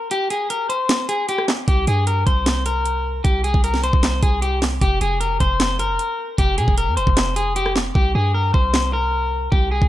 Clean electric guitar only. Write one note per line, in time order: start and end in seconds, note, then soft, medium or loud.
0.11 0.27 G4 loud
0.31 0.47 G#4 medium
0.50 0.67 A#4 medium
0.69 1.06 C5 medium
1.09 1.25 G#4 medium
1.29 1.45 G4 medium
1.68 1.84 G4 medium
1.88 2.04 G#4 medium
2.07 2.23 A#4 medium
2.27 2.63 C5 medium
2.66 3.21 A#4 medium
3.24 3.41 G4 loud
3.44 3.60 G#4 medium
3.64 3.80 A#4 medium
3.84 4.20 C5 medium
4.23 4.39 G#4 medium
4.42 4.58 G4 medium
4.82 4.98 G4 loud
5.01 5.18 G#4 medium
5.20 5.37 A#4 medium
5.40 5.77 C5 medium
5.80 6.35 A#4 medium
6.39 6.55 G4 loud
6.58 6.74 G#4 medium
6.78 6.94 A#4 medium
6.97 7.34 C5 medium
7.36 7.53 G#4 medium
7.56 7.72 G4 medium
7.95 8.12 G4 medium
8.15 8.31 G#4 medium
8.34 8.51 A#4 medium
8.54 8.91 C5 medium
8.93 9.49 A#4 medium
9.52 9.68 G4 loud
9.71 9.88 G#4 medium